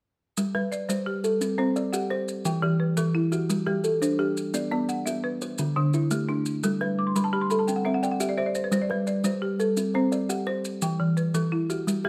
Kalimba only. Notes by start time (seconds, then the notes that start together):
0.38 G3
0.55 B4
0.89 G3
1.24 A4
1.41 C4
1.59 C5
1.76 D5
1.94 G4
2.11 C5
2.45 E3
2.63 G4
2.98 E3
3.32 F#4
3.50 G3
3.67 G4
3.84 A4
4.02 D4
4.19 G4
4.54 B3
4.72 D5
5.07 B3
5.42 C5
5.59 D3
5.77 D4
5.94 E4
6.11 A3
6.29 D4
6.64 G3
6.81 B4
7.16 G3
7.51 A4
7.69 C4
7.86 C5
8.03 D5
8.20 G4
8.38 C5
8.72 G3
8.90 B4
9.24 G3
9.60 A4
9.77 C4
9.94 C5
10.12 D5
10.29 G4
10.47 C5
10.82 E3
11.34 E3
11.70 F#4
11.87 G3
12.04 G4